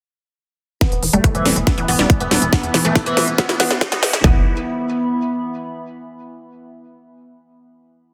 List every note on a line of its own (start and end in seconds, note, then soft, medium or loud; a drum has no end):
0.81 4.28 E3 medium
0.81 0.88 E3 medium
0.81 4.28 B3 medium
0.81 1.01 B3 loud
0.81 4.23 B3 medium
0.81 kick loud
0.81 snare soft
0.81 closed hi-hat medium
0.81 riser medium
0.92 0.99 E1 medium
0.92 closed hi-hat medium
1.03 1.09 E1 loud
1.03 1.09 E3 medium
1.03 4.24 E4 medium
1.03 open hi-hat loud
1.13 1.20 E1 medium
1.13 1.20 G3 loud
1.13 1.27 A3 medium
1.13 closed hi-hat medium
1.24 1.30 E3 loud
1.24 kick loud
1.24 closed hi-hat medium
1.29 4.24 E5 medium
1.35 1.41 E1 medium
1.35 1.55 E3 loud
1.35 1.41 G3 medium
1.35 closed hi-hat medium
1.45 1.52 E1 medium
1.45 1.55 G3 medium
1.45 snare medium
1.45 open hi-hat loud
1.56 1.63 E1 medium
1.56 1.66 E3 medium
1.56 closed hi-hat medium
1.61 4.24 B5 medium
1.67 1.80 B3 medium
1.67 kick loud
1.67 snare medium
1.67 closed hi-hat medium
1.78 1.84 E1 medium
1.78 1.84 E3 loud
1.78 closed hi-hat medium
1.88 1.95 E1 loud
1.88 1.95 E3 loud
1.88 2.08 B3 medium
1.88 open hi-hat loud
1.99 2.06 E1 medium
1.99 2.05 G3 loud
1.99 snare medium
1.99 closed hi-hat medium
2.10 kick loud
2.10 closed hi-hat medium
2.20 2.27 E1 medium
2.20 2.40 B3 loud
2.20 closed hi-hat medium
2.31 2.38 E1 loud
2.31 2.41 G3 medium
2.31 snare medium
2.31 open hi-hat loud
2.42 2.49 E1 medium
2.42 2.51 E3 medium
2.42 closed hi-hat medium
2.53 2.73 B3 loud
2.53 kick loud
2.53 snare medium
2.53 closed hi-hat medium
2.63 2.70 E2 medium
2.63 closed hi-hat medium
2.74 2.81 E1 loud
2.74 2.80 E3 loud
2.74 snare medium
2.74 open hi-hat loud
2.85 2.91 E1 medium
2.85 2.91 E3 loud
2.85 2.98 A3 medium
2.85 closed hi-hat medium
2.96 kick loud
2.96 snare medium
2.96 closed hi-hat medium
3.06 3.13 E1 medium
3.06 3.26 E3 loud
3.06 closed hi-hat medium
3.17 3.24 E1 loud
3.17 3.23 F3 medium
3.17 snare medium
3.17 open hi-hat loud
3.28 3.34 E1 loud
3.28 closed hi-hat medium
3.38 3.52 B3 medium
3.38 kick loud
3.38 snare loud
3.38 closed hi-hat medium
3.49 3.56 E1 medium
3.49 3.59 E4 medium
3.49 snare medium
3.49 closed hi-hat medium
3.60 3.66 E2 loud
3.60 3.66 E3 loud
3.60 3.80 B3 loud
3.60 snare loud
3.60 open hi-hat loud
3.70 3.77 E1 medium
3.70 snare medium
3.70 closed hi-hat medium
3.81 kick loud
3.81 snare loud
3.81 closed hi-hat medium
3.92 3.99 E1 medium
3.92 4.12 B3 loud
3.92 4.01 F4 medium
3.92 snare medium
3.92 closed hi-hat medium
4.03 4.09 E1 loud
4.03 snare loud
4.03 open hi-hat loud
4.13 4.20 E1 loud
4.13 snare medium
4.13 closed hi-hat medium
4.24 4.44 E1 loud
4.24 4.44 E3 medium
4.24 5.92 B3 medium
4.24 4.40 B3 medium
4.24 kick loud
4.24 floor tom loud
4.31 5.92 E4 medium
4.37 5.92 E5 medium
4.43 5.92 B5 medium